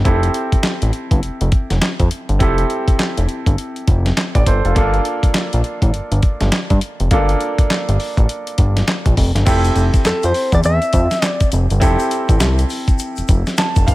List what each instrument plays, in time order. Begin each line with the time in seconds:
0.04 analog synth bass F1, grand piano C4 E4 G4 A4, kick, closed hi-hat
0.23 closed hi-hat
0.34 closed hi-hat
0.52 analog synth bass A1, kick, closed hi-hat
0.63 snare, clap, closed hi-hat
0.82 analog synth bass A1, closed hi-hat
0.93 closed hi-hat
1.11 analog synth bass G1, kick, closed hi-hat
1.23 analog synth bass F1, closed hi-hat
1.41 analog synth bass F1, closed hi-hat
1.52 kick, closed hi-hat
1.70 analog synth bass F1, snare, closed hi-hat
1.82 snare, clap, closed hi-hat
2.00 analog synth bass F2, kick, closed hi-hat
2.11 closed hi-hat
2.29 analog synth bass G1, closed hi-hat
2.39 analog synth bass F1, grand piano C4 E4 G4 A4, kick, closed hi-hat
2.58 closed hi-hat
2.70 closed hi-hat
2.88 analog synth bass F1, kick, closed hi-hat
2.99 snare, clap, closed hi-hat
3.17 analog synth bass F1, closed hi-hat
3.29 closed hi-hat
3.46 analog synth bass G1, kick, closed hi-hat
3.58 closed hi-hat
3.76 closed hi-hat
3.88 analog synth bass F1, kick, closed hi-hat
4.06 snare, closed hi-hat
4.17 snare, clap, closed hi-hat
4.35 analog synth bass A1, grand piano D5, kick, closed hi-hat
4.46 analog synth bass G1, grand piano A4 C5, kick, closed hi-hat
4.65 analog synth bass F1, grand piano F4 A4, closed hi-hat
4.75 analog synth bass G1, grand piano A#3 D4 F4 A4, kick, closed hi-hat
4.94 closed hi-hat
5.05 closed hi-hat
5.23 analog synth bass A#1, kick, closed hi-hat
5.34 snare, clap, closed hi-hat
5.53 analog synth bass A#1, closed hi-hat
5.64 closed hi-hat
5.82 analog synth bass A1, kick, closed hi-hat
5.94 analog synth bass G1, closed hi-hat
6.12 analog synth bass G1, closed hi-hat
6.23 kick, closed hi-hat
6.41 analog synth bass G1, snare, closed hi-hat
6.52 snare, clap, closed hi-hat
6.70 analog synth bass G2, kick, closed hi-hat
6.81 closed hi-hat
7.00 analog synth bass F1, closed hi-hat
7.11 analog synth bass G1, grand piano A#3 D4 F4 A4, kick, closed hi-hat
7.29 closed hi-hat
7.41 closed hi-hat
7.58 analog synth bass G1, kick, closed hi-hat
7.70 snare, clap, closed hi-hat
7.89 analog synth bass G1, closed hi-hat
8.00 open hi-hat
8.17 analog synth bass A1, kick, closed hi-hat
8.29 closed hi-hat
8.47 closed hi-hat
8.58 analog synth bass G1, kick, closed hi-hat
8.77 snare, closed hi-hat
8.88 snare, clap, closed hi-hat
9.06 analog synth bass A#1, kick, closed hi-hat
9.17 analog synth bass F1, kick, open hi-hat
9.35 analog synth bass G1, snare, closed hi-hat
9.45 analog synth bass F1, grand piano C4 E4 G4 A4, kick, closed hi-hat, crash, shaker
9.65 closed hi-hat, shaker
9.76 analog synth bass F1, closed hi-hat, shaker
9.94 kick, closed hi-hat, shaker
10.05 analog synth bass F2, clean electric guitar A4, snare, clap, closed hi-hat, shaker
10.23 analog synth bass F2, clean electric guitar C5, closed hi-hat, shaker
10.34 open hi-hat, shaker
10.52 analog synth bass E2, clean electric guitar D5, kick, closed hi-hat, shaker
10.64 analog synth bass E2, clean electric guitar E5, closed hi-hat, shaker
10.82 closed hi-hat, shaker
10.93 analog synth bass F2, kick, closed hi-hat, shaker
11.11 snare, closed hi-hat, shaker
11.22 clean electric guitar D5, snare, clap, closed hi-hat, shaker
11.40 kick, closed hi-hat, shaker
11.52 analog synth bass F1, closed hi-hat, shaker
11.70 analog synth bass G1, closed hi-hat, shaker
11.80 analog synth bass F1, grand piano C4 E4 G4 A4, kick, closed hi-hat, shaker
11.99 closed hi-hat, shaker
12.11 closed hi-hat, shaker
12.29 analog synth bass A1, kick, closed hi-hat, shaker
12.40 analog synth bass C2, snare, clap, closed hi-hat, shaker
12.58 closed hi-hat, shaker
12.69 open hi-hat, shaker
12.87 kick, closed hi-hat, shaker
12.99 closed hi-hat, shaker
13.16 analog synth bass F1, closed hi-hat, shaker
13.28 analog synth bass F1, kick, closed hi-hat, shaker
13.46 snare, closed hi-hat, shaker
13.57 grand piano A5, snare, clap, closed hi-hat, shaker
13.76 analog synth bass F1, kick, closed hi-hat, shaker
13.87 analog synth bass G1, grand piano F5, kick, closed hi-hat, shaker